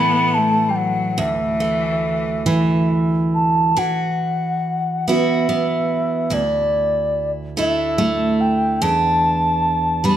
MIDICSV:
0, 0, Header, 1, 4, 480
1, 0, Start_track
1, 0, Tempo, 842697
1, 676, Time_signature, 6, 3, 24, 8
1, 1163, Tempo, 865801
1, 3083, Tempo, 824176
1, 5799, End_track
2, 0, Start_track
2, 0, Title_t, "Flute"
2, 0, Program_c, 0, 73
2, 0, Note_on_c, 0, 83, 88
2, 195, Note_on_c, 0, 81, 80
2, 204, Note_off_c, 0, 83, 0
2, 402, Note_on_c, 0, 79, 57
2, 410, Note_off_c, 0, 81, 0
2, 431, Note_on_c, 0, 78, 76
2, 440, Note_off_c, 0, 79, 0
2, 677, Note_on_c, 0, 76, 78
2, 685, Note_off_c, 0, 78, 0
2, 1646, Note_off_c, 0, 76, 0
2, 1887, Note_on_c, 0, 81, 77
2, 2130, Note_on_c, 0, 78, 71
2, 2139, Note_off_c, 0, 81, 0
2, 2847, Note_on_c, 0, 76, 70
2, 2855, Note_off_c, 0, 78, 0
2, 3567, Note_on_c, 0, 74, 72
2, 3576, Note_off_c, 0, 76, 0
2, 4138, Note_off_c, 0, 74, 0
2, 4297, Note_on_c, 0, 76, 81
2, 4774, Note_on_c, 0, 79, 77
2, 4783, Note_off_c, 0, 76, 0
2, 5014, Note_on_c, 0, 81, 90
2, 5023, Note_off_c, 0, 79, 0
2, 5730, Note_on_c, 0, 83, 93
2, 5739, Note_off_c, 0, 81, 0
2, 5799, Note_off_c, 0, 83, 0
2, 5799, End_track
3, 0, Start_track
3, 0, Title_t, "Steel-string acoustic guitar"
3, 0, Program_c, 1, 25
3, 0, Note_on_c, 1, 45, 64
3, 0, Note_on_c, 1, 52, 65
3, 0, Note_on_c, 1, 57, 60
3, 670, Note_on_c, 1, 38, 71
3, 672, Note_off_c, 1, 45, 0
3, 910, Note_off_c, 1, 57, 0
3, 912, Note_on_c, 1, 57, 50
3, 1393, Note_off_c, 1, 52, 0
3, 1395, Note_on_c, 1, 52, 61
3, 2119, Note_off_c, 1, 52, 0
3, 2119, Note_on_c, 1, 52, 59
3, 2122, Note_on_c, 1, 66, 51
3, 2129, Note_off_c, 1, 38, 0
3, 2178, Note_off_c, 1, 57, 0
3, 2843, Note_off_c, 1, 66, 0
3, 2845, Note_on_c, 1, 59, 50
3, 2852, Note_on_c, 1, 64, 46
3, 2853, Note_on_c, 1, 66, 58
3, 3067, Note_off_c, 1, 59, 0
3, 3074, Note_on_c, 1, 59, 53
3, 3548, Note_on_c, 1, 38, 57
3, 3551, Note_off_c, 1, 66, 0
3, 3553, Note_off_c, 1, 64, 0
3, 3553, Note_on_c, 1, 64, 55
3, 3565, Note_off_c, 1, 52, 0
3, 3610, Note_off_c, 1, 59, 0
3, 4286, Note_on_c, 1, 57, 56
3, 4287, Note_on_c, 1, 62, 46
3, 4291, Note_off_c, 1, 64, 0
3, 4293, Note_on_c, 1, 64, 61
3, 4519, Note_off_c, 1, 57, 0
3, 4526, Note_on_c, 1, 57, 58
3, 4999, Note_off_c, 1, 38, 0
3, 5011, Note_on_c, 1, 40, 76
3, 5014, Note_off_c, 1, 64, 0
3, 5016, Note_off_c, 1, 62, 0
3, 5016, Note_on_c, 1, 62, 55
3, 5051, Note_off_c, 1, 57, 0
3, 5721, Note_off_c, 1, 62, 0
3, 5723, Note_on_c, 1, 55, 52
3, 5727, Note_on_c, 1, 59, 42
3, 5728, Note_on_c, 1, 62, 58
3, 5799, Note_off_c, 1, 40, 0
3, 5799, Note_off_c, 1, 55, 0
3, 5799, Note_off_c, 1, 59, 0
3, 5799, Note_off_c, 1, 62, 0
3, 5799, End_track
4, 0, Start_track
4, 0, Title_t, "Cello"
4, 0, Program_c, 2, 42
4, 0, Note_on_c, 2, 59, 82
4, 211, Note_on_c, 2, 57, 72
4, 220, Note_off_c, 2, 59, 0
4, 393, Note_on_c, 2, 55, 57
4, 401, Note_off_c, 2, 57, 0
4, 442, Note_on_c, 2, 54, 65
4, 451, Note_off_c, 2, 55, 0
4, 695, Note_on_c, 2, 52, 65
4, 704, Note_off_c, 2, 54, 0
4, 1655, Note_off_c, 2, 52, 0
4, 5799, End_track
0, 0, End_of_file